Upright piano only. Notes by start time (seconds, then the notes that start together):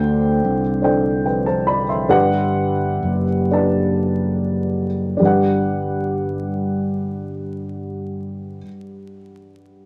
Already playing: D3 D4 A4 C5 G5
0.82 D4 A4 C5 G5
1.25 B4 G5
1.46 C5 A5
1.67 D5 B5
1.89 E5 C6
2.09 G3 D4 G4 B4 F#5
3.51 D4 G4 B4 A5
5.17 G2 D4 G4
5.22 B4 F#5